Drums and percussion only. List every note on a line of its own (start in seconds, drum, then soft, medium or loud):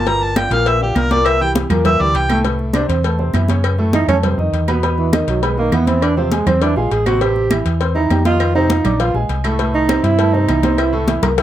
0.06 cowbell loud
0.06 high conga soft
0.21 high conga soft
0.36 cowbell medium
0.36 high conga loud
0.36 claves medium
0.51 cowbell medium
0.66 cowbell loud
0.66 high conga soft
0.81 high conga soft
0.95 cowbell medium
0.95 high conga medium
0.95 claves medium
1.11 cowbell medium
1.11 high conga medium
1.25 cowbell loud
1.25 high conga soft
1.25 claves medium
1.41 high conga soft
1.55 cowbell medium
1.55 high conga loud
1.70 cowbell medium
1.70 high conga soft
1.70 low conga medium
1.70 claves medium
1.85 cowbell loud
1.85 high conga soft
1.85 low conga medium
2.00 high conga soft
2.15 cowbell medium
2.15 high conga soft
2.29 cowbell medium
2.29 high conga medium
2.29 claves medium
2.44 cowbell loud
2.44 high conga soft
2.59 high conga soft
2.73 cowbell medium
2.73 high conga loud
2.73 claves medium
2.90 cowbell medium
3.03 cowbell loud
3.03 high conga soft
3.19 high conga soft
3.34 cowbell medium
3.34 high conga medium
3.34 claves medium
3.48 cowbell medium
3.48 high conga medium
3.63 cowbell loud
3.63 high conga soft
3.63 claves medium
3.78 high conga soft
3.93 cowbell medium
3.93 high conga medium
4.08 cowbell medium
4.08 high conga soft
4.08 low conga medium
4.08 claves medium
4.23 cowbell loud
4.23 high conga soft
4.23 low conga medium
4.39 high conga soft
4.53 cowbell medium
4.53 high conga soft
4.68 cowbell medium
4.68 high conga medium
4.68 claves medium
4.83 cowbell loud
4.83 high conga soft
4.98 high conga soft
5.13 cowbell medium
5.13 high conga loud
5.13 claves medium
5.28 cowbell medium
5.43 cowbell loud
5.43 high conga soft
5.58 high conga soft
5.72 cowbell medium
5.72 high conga medium
5.72 claves medium
5.87 cowbell medium
5.87 high conga medium
6.02 cowbell loud
6.02 high conga soft
6.02 claves medium
6.17 high conga soft
6.32 cowbell medium
6.32 high conga loud
6.47 cowbell medium
6.47 high conga soft
6.47 low conga medium
6.47 claves medium
6.61 cowbell loud
6.61 high conga soft
6.76 high conga soft
6.91 cowbell medium
6.91 high conga soft
7.06 cowbell medium
7.06 high conga medium
7.06 claves medium
7.21 cowbell loud
7.21 high conga soft
7.36 high conga soft
7.51 cowbell medium
7.51 high conga loud
7.51 claves medium
7.66 cowbell medium
7.81 cowbell loud
7.81 high conga soft
7.96 high conga soft
8.10 cowbell medium
8.10 high conga medium
8.10 claves medium
8.25 cowbell medium
8.25 high conga medium
8.40 cowbell loud
8.40 high conga soft
8.40 claves medium
8.55 high conga soft
8.70 cowbell medium
8.70 high conga loud
8.84 cowbell medium
8.84 high conga soft
8.84 low conga medium
8.84 claves medium
8.99 cowbell loud
8.99 high conga soft
9.15 high conga soft
9.29 cowbell medium
9.29 high conga soft
9.44 cowbell medium
9.44 claves medium
9.59 cowbell loud
9.59 high conga soft
9.74 high conga soft
9.89 cowbell medium
9.89 high conga loud
9.89 claves medium
10.04 cowbell medium
10.19 cowbell loud
10.19 high conga soft
10.35 high conga soft
10.49 cowbell medium
10.49 high conga medium
10.49 claves medium
10.63 cowbell medium
10.63 high conga medium
10.78 cowbell loud
10.78 high conga soft
10.78 claves medium
10.93 high conga soft
11.08 cowbell medium
11.08 high conga loud
11.23 cowbell medium
11.23 high bongo medium
11.23 high conga soft
11.23 low conga loud
11.23 claves medium
11.38 cowbell loud
11.38 high bongo medium
11.38 high conga soft